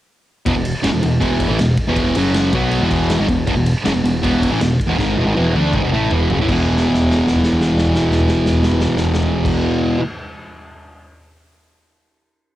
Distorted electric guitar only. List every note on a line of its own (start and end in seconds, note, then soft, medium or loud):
0.45 0.53 E2 loud
0.45 0.55 B2 loud
0.55 0.70 E2 medium
0.55 0.71 B2 medium
0.83 0.92 F#2 medium
0.83 0.92 C#3 loud
0.92 1.01 E2 medium
0.92 1.02 B2 medium
1.02 1.17 E2 medium
1.02 1.18 B2 medium
1.20 1.49 E2 loud
1.20 1.48 B2 loud
1.20 1.49 E3 loud
1.48 1.58 A2 loud
1.48 1.59 E3 loud
1.59 1.74 E2 medium
1.59 1.74 B2 medium
1.88 2.15 E2 medium
1.88 2.15 B2 medium
1.88 2.16 E3 medium
2.16 2.53 F#2 medium
2.16 2.53 C#3 loud
2.16 2.54 F#3 loud
2.53 2.81 B2 medium
2.53 2.81 F#3 medium
2.53 2.82 B3 medium
2.83 3.19 E2 loud
2.83 3.19 B2 loud
2.83 3.20 E3 loud
3.20 3.28 G#2 medium
3.20 3.29 D#3 loud
3.29 3.44 E2 medium
3.29 3.44 B2 medium
3.47 3.55 E2 loud
3.47 3.55 B2 loud
3.56 3.71 E2 medium
3.56 3.71 B2 medium
3.84 3.93 F#2 medium
3.84 3.93 C#3 loud
3.93 4.02 E2 medium
3.93 4.03 B2 medium
4.03 4.18 E2 medium
4.03 4.19 B2 medium
4.22 4.49 E2 loud
4.22 4.50 B2 loud
4.22 4.50 E3 loud
4.51 4.59 A2 medium
4.51 4.60 E3 loud
4.60 4.75 E2 medium
4.60 4.75 B2 medium
4.87 4.96 E2 medium
4.87 4.97 B2 loud
4.98 5.16 G#2 loud
4.98 5.16 D#3 loud
4.98 5.16 G#3 loud
5.18 5.25 E2 medium
5.18 5.26 B2 medium
5.26 5.34 G#2 medium
5.26 5.35 D#3 loud
5.35 5.53 E2 medium
5.35 5.54 B2 medium
5.35 5.54 E3 medium
5.55 5.73 D3 medium
5.55 5.73 A3 medium
5.55 5.73 D4 loud
5.72 5.81 G#2 medium
5.72 5.82 D#3 loud
5.83 5.91 E2 medium
5.83 5.92 B2 loud
5.93 6.10 A2 loud
5.93 6.11 E3 medium
5.93 6.11 A3 medium
6.12 6.29 E2 medium
6.12 6.30 B2 loud
6.12 6.30 E3 loud
6.30 6.39 F#2 loud
6.30 6.39 C#3 loud
6.40 6.48 A2 medium
6.40 6.49 E3 loud
6.47 9.97 E2 loud
6.47 10.00 B2 loud
6.52 10.02 E3 loud